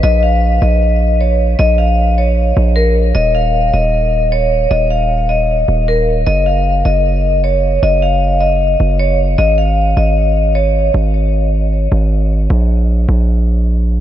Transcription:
<<
  \new Staff \with { instrumentName = "Vibraphone" } { \time 4/4 \key aes \mixolydian \tempo 4 = 154 ees''8 f''4 ees''4. des''4 | ees''8 f''4 des''4. bes'8 r8 | ees''8 f''4 ees''4. des''4 | ees''8 f''4 ees''4. bes'8 r8 |
ees''8 f''4 ees''4. des''4 | ees''8 f''4 ees''4. des''8 r8 | ees''8 f''4 ees''4. des''4 | r1 |
r1 | }
  \new Staff \with { instrumentName = "808-style bass" } { \clef bass \time 4/4 \key aes \mixolydian bes,,4. bes,,2~ bes,,8 | bes,,2~ bes,,8 bes,,4. | ees,,4. ees,,2~ ees,,8 | ees,,2~ ees,,8 ees,,4. |
ges,,4. ges,,2~ ges,,8 | ges,,2~ ges,,8 ges,,4. | aes,,4. aes,,2~ aes,,8 | aes,,2~ aes,,8 aes,,4. |
bes,,4. bes,,2~ bes,,8 | }
>>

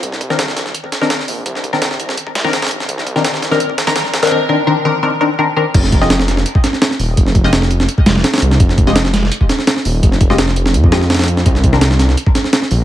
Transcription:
<<
  \new Staff \with { instrumentName = "Synth stab" } { \time 4/4 \key f \dorian \tempo 4 = 168 r8. <ees c' d' bes'>16 r4. r16 <ees c' d' bes'>16 r4 | r8. <ees c' d' bes'>16 r4. r16 <ees c' d' bes'>16 r4 | r8. <ees c' d' bes'>16 r8. <ees c' d' bes'>16 r8. <ees c' d' bes'>16 r8. <ees c' d' bes'>16 | <ees c' d' bes'>16 r16 <ees c' d' bes'>16 r16 <ees c' d' bes'>16 r16 <ees c' d' bes'>16 r16 <ees c' d' bes'>16 r16 <ees c' d' bes'>16 r16 <ees c' d' bes'>16 r16 <ees c' d' bes'>16 r16 |
r8. <aes f' g' ees''>16 r2. | r8. <aes f' g' ees''>16 r2. | r8. <aes f' g' ees''>16 r2. | r8. <aes f' g' ees''>16 r4. <aes f' g' ees''>16 r4 r16 |
r8. <ees c' d' bes'>16 r2. | }
  \new Staff \with { instrumentName = "Detuned saw bass" } { \clef bass \time 4/4 \key f \dorian c,2 r4. bes,,8 | c,2 r8 c,16 c,16 r8 g,,8 | c,2 r4. bes,,8 | r1 |
f,,2 r4. ees,,8 | f,,2 r8 f,,16 f,,16 r8 c,8 | f,,2 r4. ees,,8 | f,,2 f,2 |
c,2 r4. bes,,8 | }
  \new DrumStaff \with { instrumentName = "Drums" } \drummode { \time 4/4 <hh bd>16 sn16 <hh bd>16 sn16 <hh sn>16 sn16 <hh sn>16 sn16 hh16 bd16 <hh sn>16 sn16 <hh sn>16 sn16 hho8 | <hh bd>16 sn16 <hh bd>16 sn16 <hh sn>16 sn16 hh16 sn16 hh16 bd16 <hh sn>16 sn16 <hh sn>16 <hh sn>32 <hh sn>32 hh16 sn16 | <hh bd>16 sn16 <hh bd>16 sn16 <hh sn>16 sn16 <hh sn>16 sn16 hh16 bd16 <hh sn>16 <hh sn>16 <hh sn>16 sn16 <hh sn>16 <hh sn>32 <hh sn>32 | r4 r4 r4 r4 |
<cymc hh bd>16 sn16 <hh bd>16 sn16 <hh sn>16 sn16 <hh sn>16 sn16 hh16 bd16 <hh sn>16 sn16 <hh sn>16 sn16 hho8 | <hh bd>16 sn16 <hh bd>16 sn16 <hh sn>16 sn16 hh16 sn16 hh16 bd16 <hh sn>16 sn16 <hh sn>16 <hh sn>32 <hh sn>32 hh16 sn16 | <hh bd>16 sn16 <hh bd>16 sn16 <hh sn>16 sn16 <hh sn>16 sn16 hh16 bd16 <hh sn>16 sn16 <hh sn>16 sn16 hho8 | <hh bd>16 sn16 <hh bd>16 sn16 <hh sn>16 sn16 hh16 sn16 hh16 bd16 <hh sn>16 sn16 <hh sn>32 <hh sn>32 <hh sn>32 <hh sn>32 hh16 sn16 |
<hh bd>16 sn16 <hh bd>16 sn16 <hh sn>16 sn16 <hh sn>16 sn16 hh16 bd16 <hh sn>16 sn16 <hh sn>16 sn16 hho8 | }
>>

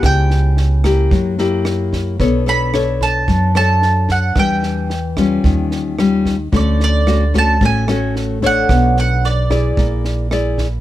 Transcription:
<<
  \new Staff \with { instrumentName = "Mandolin" } { \time 4/4 \key b \dorian \tempo 4 = 111 g''2 r2 | r8 b''4 a''4 a''4 fis''8 | g''2 r2 | d''8 d''4 a''8 gis''4 r8 fis''8~ |
fis''8 fis''8 d''2 r4 | }
  \new Staff \with { instrumentName = "Nylon-string guitar" } { \time 4/4 \key b \dorian << { <b e' g'>4. <bes e' g'>4 <ais e' g'>4. | <d' a' cis''>8 <d' a' cis''>8 <d' a' cis''>4. <d' a' cis''>4. | <g d'>4 r8 <g cis' f'>4. <g cis' eis'>8 r8 | <a cis' fis'>4 <a cis' fis'>8 <a cis' fis'>8 <a cis' fis'>8 <a cis' fis'>4 <d' a' cis''>8~ |
<d' a' cis''>4. <e' gis' d''>4. <e' aes' d''>8 r8 | } \\ { cis2 fis2 | b2 fis2 | e2 dis2 | d2 a,2 |
b2 bes2 | } >> }
  \new Staff \with { instrumentName = "Upright bass" } { \clef bass \time 4/4 \key b \dorian cis,2 fis,2 | b,,2 fis,2 | e,2 dis,2 | d,2 a,,2 |
b,,2 bes,,2 | }
  \new DrumStaff \with { instrumentName = "Drums" } \drummode { \time 4/4 <bd ss sn>8 sn8 sn8 <bd ss sn>8 <bd sn>8 sn8 <ss sn>8 <bd sn>8 | <bd sn>8 sn8 <ss sn>8 <bd sn>8 <bd sn>8 <ss sn>8 sn8 <bd sn>8 | <bd ss sn>8 sn8 sn8 <bd ss sn>8 <bd sn>8 sn8 <ss sn>8 <bd sn>8 | <bd sn>8 sn8 <ss sn>8 <bd sn>8 <bd sn>8 <ss sn>8 sn8 <bd sn>8 |
<bd ss sn>8 sn8 sn8 <bd ss sn>8 <bd sn>8 sn8 <ss sn>8 <bd sn>8 | }
>>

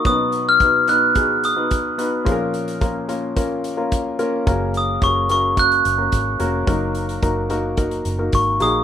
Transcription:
<<
  \new Staff \with { instrumentName = "Glockenspiel" } { \time 4/4 \key fis \major \tempo 4 = 109 dis'''8. eis'''8. fis'''4 dis'''4 r8 | r1 | r8 dis'''8 cis'''8 cis'''8 fis'''4. r8 | r2. cis'''8 dis'''8 | }
  \new Staff \with { instrumentName = "Grand piano" } { \time 4/4 \key fis \major <b cis' dis' fis' b'>4 <b dis' fis' b'>8 <b dis' fis' b'>8 <b dis' fis' gis'>8. <b dis' fis' b'>8. <b dis' fis' b'>8 | <ais cis' eis' gis' ais'>4 <ais cis' eis' ais'>8 <ais cis' eis' ais'>8 <ais cis' eis' ais'>8. <ais cis' eis' ais'>8. <ais cis' eis' ais'>8 | <ais cis' fis' ais'>4 <ais cis' fis' gis'>8 <ais cis' fis' ais'>8 <ais cis' fis' cis''>8. <ais cis' fis' ais'>8. <ais cis' fis' ais'>8 | <ais dis' fis' ais'>4 <ais dis' fis' ais'>8 <ais dis' fis' ais'>8 <ais dis' fis' ais'>8. <ais dis' fis' ais'>8. <ais dis' fis' gis'>8 | }
  \new Staff \with { instrumentName = "Grand piano" } { \clef bass \time 4/4 \key fis \major <b, fis>4. r2 r8 | <ais, eis>4. r2 r8 | cis4. r2 r8 | fis4. r2 r8 | }
  \new Staff \with { instrumentName = "Fingered electric bass" } { \clef bass \time 4/4 \key fis \major r1 | r1 | fis,,4 fis,,4. fis,,8 gis,,8 eis,,8 | fis,,4 fis,,4. fis,,8 gis,,8 ais,,8 | }
  \new DrumStaff \with { instrumentName = "Drums" } \drummode { \time 4/4 <hh bd>8 hh8 <hh bd>8 hh8 <hh bd>8 hh8 <hh bd>8 hh8 | <hh bd>8 hh16 hh16 <hh bd>8 hh8 <hh bd>8 hh8 <hh bd>8 hh8 | <hh bd>8 hh8 <hh bd>8 hh8 <hh bd>16 hh16 hh8 <hh bd>8 hh8 | <hh bd>8 hh16 hh16 <hh bd>8 hh8 <hh bd>16 hh16 hh8 <hh bd>8 hh8 | }
>>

